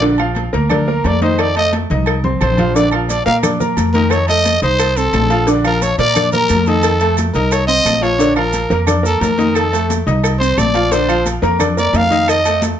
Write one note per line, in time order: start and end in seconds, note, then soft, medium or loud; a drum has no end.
0.00 0.47 A#1 loud
0.00 0.16 D3 medium
0.00 0.16 D4 medium
0.00 0.16 D5 medium
0.00 cowbell loud
0.00 high conga soft
0.18 0.47 F3 medium
0.18 0.47 F4 medium
0.18 0.47 F5 medium
0.18 high conga soft
0.18 low agogo loud
0.18 claves medium
0.35 cowbell medium
0.35 high conga medium
0.35 low agogo medium
0.53 1.01 D2 loud
0.53 0.67 A#3 medium
0.53 0.67 A#4 medium
0.53 0.67 A#5 medium
0.53 cowbell medium
0.53 high conga soft
0.70 0.84 D4 medium
0.70 1.08 A#4 medium
0.70 0.84 D5 medium
0.70 0.84 D6 medium
0.70 cowbell loud
0.70 high conga soft
0.70 low conga medium
0.70 low agogo loud
0.70 claves medium
0.87 1.15 A#3 medium
0.87 1.16 A#4 medium
0.87 1.16 A#5 medium
0.87 high conga soft
1.04 1.84 F2 loud
1.04 1.22 D5 medium
1.04 cowbell medium
1.04 high conga medium
1.04 low timbale medium
1.04 low agogo medium
1.21 1.50 D#3 medium
1.21 1.50 D#4 medium
1.21 1.42 C5 medium
1.21 1.50 D#5 medium
1.21 cowbell medium
1.21 high conga medium
1.38 1.56 D5 medium
1.38 cowbell loud
1.38 high conga soft
1.38 low agogo loud
1.38 claves medium
1.55 1.84 A3 medium
1.55 1.84 A4 medium
1.55 1.72 D#5 loud
1.55 1.84 A5 medium
1.55 cowbell medium
1.55 high conga soft
1.55 low agogo medium
1.73 cowbell medium
1.73 high conga medium
1.73 low agogo medium
1.90 2.38 C2 medium
1.90 2.18 D#4 medium
1.90 2.18 D#5 medium
1.90 2.19 D#6 medium
1.90 cowbell medium
1.90 low conga medium
2.06 cowbell loud
2.06 low agogo loud
2.06 claves medium
2.24 2.52 C4 medium
2.24 2.52 C5 medium
2.24 2.52 C6 medium
2.24 low conga medium
2.41 3.20 A#1 loud
2.41 2.77 C5 medium
2.41 cowbell medium
2.41 low conga loud
2.41 low agogo loud
2.41 claves medium
2.57 2.72 F3 medium
2.57 2.72 F4 medium
2.57 2.73 F5 medium
2.57 cowbell medium
2.57 low conga loud
2.57 low agogo medium
2.75 2.90 D3 medium
2.75 2.89 D4 medium
2.75 2.92 D5 medium
2.75 2.90 D5 medium
2.75 cowbell loud
2.75 high conga soft
2.75 maracas medium
2.91 3.20 F3 medium
2.91 3.20 F4 medium
2.91 3.08 A#4 medium
2.91 3.21 F5 medium
2.91 high conga soft
2.91 low agogo loud
2.91 claves medium
3.09 3.25 D5 medium
3.09 cowbell medium
3.09 high conga medium
3.09 low agogo medium
3.09 maracas medium
3.25 3.74 A#2 medium
3.25 3.40 A#3 medium
3.25 3.40 A#4 medium
3.25 3.36 F5 medium
3.25 3.40 A#5 medium
3.25 cowbell medium
3.25 high conga soft
3.25 maracas soft
3.43 3.57 D4 medium
3.43 3.57 D5 medium
3.43 3.57 D6 medium
3.43 cowbell loud
3.43 high conga soft
3.43 low conga medium
3.43 low agogo loud
3.43 claves medium
3.43 maracas medium
3.60 3.88 A#3 medium
3.60 3.88 A#4 medium
3.60 3.88 A#5 medium
3.60 high conga soft
3.60 low conga medium
3.60 maracas medium
3.77 4.57 F2 medium
3.77 cowbell medium
3.77 high conga medium
3.77 low agogo medium
3.77 maracas medium
3.94 4.23 D#3 medium
3.94 4.23 D#4 medium
3.94 4.13 A#4 loud
3.94 4.23 D#5 medium
3.94 cowbell medium
3.94 high conga medium
3.94 maracas soft
4.10 4.28 C#5 medium
4.10 cowbell loud
4.10 low agogo loud
4.10 claves medium
4.10 maracas medium
4.27 4.56 A3 medium
4.27 4.57 A4 medium
4.27 4.60 D#5 loud
4.27 4.57 A5 medium
4.27 cowbell medium
4.27 high conga soft
4.27 low agogo medium
4.27 maracas medium
4.45 cowbell medium
4.45 high conga loud
4.45 low agogo medium
4.45 maracas medium
4.62 5.10 C2 medium
4.62 4.90 D#4 medium
4.62 4.99 C5 loud
4.62 4.90 D#5 medium
4.62 4.90 D#6 medium
4.62 cowbell medium
4.62 high conga soft
4.62 maracas soft
4.79 cowbell loud
4.79 high conga soft
4.79 low agogo loud
4.79 claves medium
4.79 maracas medium
4.97 5.25 C4 medium
4.97 5.48 A4 loud
4.97 5.25 C5 medium
4.97 5.25 C6 medium
4.97 high conga soft
4.97 maracas medium
5.13 5.93 A#1 loud
5.13 cowbell medium
5.13 high conga medium
5.13 low timbale medium
5.13 low agogo loud
5.13 claves medium
5.13 maracas medium
5.30 5.44 F3 medium
5.30 5.44 F4 medium
5.30 5.44 F5 medium
5.30 cowbell medium
5.30 low agogo medium
5.30 maracas soft
5.47 5.61 D3 medium
5.47 5.61 D4 medium
5.47 5.62 D5 medium
5.47 cowbell loud
5.47 high conga soft
5.47 maracas medium
5.64 5.92 F3 medium
5.64 5.92 F4 medium
5.64 5.84 A#4 loud
5.64 5.93 F5 medium
5.64 high conga soft
5.64 low agogo loud
5.64 claves medium
5.64 maracas medium
5.81 5.98 C#5 medium
5.81 cowbell medium
5.81 high conga medium
5.81 low agogo medium
5.81 maracas medium
5.98 6.46 A#2 loud
5.98 6.13 A#3 medium
5.98 6.13 A#4 medium
5.98 6.30 D5 loud
5.98 6.13 A#5 medium
5.98 cowbell medium
5.98 maracas soft
6.14 6.29 D4 medium
6.14 6.29 D5 medium
6.14 6.30 D6 medium
6.14 cowbell loud
6.14 high conga soft
6.14 low conga medium
6.14 low agogo loud
6.14 claves medium
6.14 maracas medium
6.32 6.61 A#3 medium
6.32 6.69 A#4 loud
6.32 6.61 A#4 medium
6.32 6.61 A#5 medium
6.32 high conga soft
6.32 low conga medium
6.32 maracas medium
6.49 7.29 F2 loud
6.49 cowbell medium
6.49 high conga medium
6.49 low agogo medium
6.49 maracas medium
6.66 6.95 D#3 medium
6.66 6.95 D#4 medium
6.66 7.18 A4 loud
6.66 6.95 D#5 medium
6.66 cowbell medium
6.66 high conga medium
6.66 maracas soft
6.83 cowbell loud
6.83 high conga soft
6.83 low agogo loud
6.83 claves medium
6.83 maracas medium
7.00 7.29 A3 medium
7.00 7.29 A4 medium
7.00 7.29 A5 medium
7.00 cowbell medium
7.00 high conga soft
7.00 low agogo medium
7.00 maracas medium
7.17 cowbell medium
7.17 high conga loud
7.17 low agogo medium
7.17 maracas medium
7.34 7.82 C2 medium
7.34 7.63 D#4 medium
7.34 7.54 A#4 medium
7.34 7.63 D#5 medium
7.34 7.63 D#6 medium
7.34 cowbell medium
7.34 high conga soft
7.34 maracas soft
7.52 7.67 C#5 medium
7.52 cowbell loud
7.52 high conga soft
7.52 low agogo loud
7.52 claves medium
7.52 maracas medium
7.67 7.96 C4 medium
7.67 7.96 C5 medium
7.67 8.04 D#5 loud
7.67 7.97 C6 medium
7.67 high conga soft
7.67 maracas medium
7.85 8.65 A#1 loud
7.85 cowbell medium
7.85 high conga medium
7.85 low timbale medium
7.85 low agogo loud
7.85 claves medium
7.85 maracas medium
8.01 8.16 F3 medium
8.01 8.16 F4 medium
8.01 8.36 C#5 loud
8.01 8.16 F5 medium
8.01 cowbell medium
8.01 low agogo medium
8.01 maracas soft
8.19 8.33 D3 medium
8.19 8.33 D4 medium
8.19 8.33 D5 medium
8.19 cowbell loud
8.19 high conga soft
8.19 maracas medium
8.36 8.64 F3 medium
8.36 8.65 F4 medium
8.36 8.84 A#4 medium
8.36 8.65 F5 medium
8.36 high conga soft
8.36 low agogo loud
8.36 claves medium
8.53 cowbell medium
8.53 high conga medium
8.53 low agogo medium
8.53 maracas medium
8.70 9.18 F2 loud
8.70 8.84 A#3 medium
8.70 8.85 A#4 medium
8.70 8.84 A#5 medium
8.70 cowbell medium
8.70 high conga soft
8.70 maracas soft
8.87 9.01 D4 medium
8.87 9.01 D5 medium
8.87 9.02 D6 medium
8.87 cowbell loud
8.87 high conga soft
8.87 low conga medium
8.87 low agogo loud
8.87 claves medium
8.87 maracas medium
9.03 9.32 A#3 medium
9.03 9.22 A4 medium
9.03 9.32 A#4 medium
9.03 9.32 A#5 medium
9.03 high conga soft
9.03 maracas medium
9.21 10.01 F2 loud
9.21 9.56 A#4 loud
9.21 cowbell medium
9.21 high conga medium
9.21 low timbale medium
9.21 low agogo medium
9.21 maracas medium
9.38 9.66 D#3 medium
9.38 9.67 D#4 medium
9.38 9.66 D#5 medium
9.38 cowbell medium
9.38 high conga medium
9.38 maracas soft
9.55 9.89 A4 medium
9.55 cowbell loud
9.55 low agogo loud
9.55 claves medium
9.55 maracas medium
9.72 10.01 A3 medium
9.72 10.01 A4 medium
9.72 10.01 A5 medium
9.72 cowbell medium
9.72 high conga soft
9.72 low agogo medium
9.72 maracas medium
9.90 cowbell medium
9.90 high conga loud
9.90 low agogo medium
9.90 maracas medium
10.07 10.54 C2 loud
10.07 10.35 D#4 medium
10.07 10.35 D#5 medium
10.07 10.35 D#6 medium
10.07 cowbell medium
10.07 high conga soft
10.07 maracas soft
10.24 cowbell loud
10.24 high conga soft
10.24 low agogo loud
10.24 claves medium
10.24 maracas medium
10.39 10.69 C4 medium
10.39 10.60 C5 loud
10.39 10.68 C5 medium
10.39 10.69 C6 medium
10.39 high conga soft
10.39 maracas medium
10.58 11.37 A#1 loud
10.58 10.93 D5 loud
10.58 cowbell medium
10.58 high conga medium
10.58 low timbale medium
10.58 low agogo loud
10.58 claves medium
10.58 maracas medium
10.74 10.88 F3 medium
10.74 10.89 F4 medium
10.74 10.89 F5 medium
10.74 cowbell medium
10.74 high conga medium
10.74 low agogo medium
10.74 maracas soft
10.92 11.06 D3 medium
10.92 11.06 D4 medium
10.92 11.26 C5 medium
10.92 11.06 D5 medium
10.92 cowbell loud
10.92 high conga soft
10.92 maracas medium
11.08 11.36 F3 medium
11.08 11.37 F4 medium
11.08 11.37 F5 medium
11.08 high conga soft
11.08 low agogo loud
11.08 claves medium
11.08 maracas medium
11.26 cowbell medium
11.26 high conga medium
11.26 low agogo medium
11.26 maracas medium
11.42 11.90 F2 loud
11.42 11.56 A#3 medium
11.42 11.57 A#4 medium
11.42 11.57 A#5 medium
11.42 cowbell medium
11.42 high conga soft
11.42 maracas soft
11.59 11.73 D4 medium
11.59 11.74 D5 medium
11.59 11.74 D6 medium
11.59 cowbell loud
11.59 high conga soft
11.59 low conga medium
11.59 low agogo loud
11.59 claves medium
11.59 maracas medium
11.77 12.05 A#3 medium
11.77 12.05 A#4 medium
11.77 11.98 D5 loud
11.77 12.05 A#5 medium
11.77 high conga soft
11.77 maracas medium
11.93 12.73 F2 loud
11.93 12.31 F5 loud
11.93 cowbell medium
11.93 high conga medium
11.93 low timbale medium
11.93 low agogo medium
11.93 maracas medium
12.10 12.38 D#3 medium
12.10 12.39 D#4 medium
12.10 12.39 D#5 loud
12.10 cowbell medium
12.10 high conga medium
12.10 maracas soft
12.28 12.63 D#5 loud
12.28 cowbell loud
12.28 low agogo loud
12.28 claves medium
12.28 maracas medium
12.45 12.73 A3 medium
12.45 12.73 A4 medium
12.45 12.73 A5 medium
12.45 cowbell medium
12.45 high conga soft
12.45 low agogo medium
12.45 maracas medium
12.62 cowbell medium
12.62 high conga loud
12.62 low agogo medium
12.62 maracas medium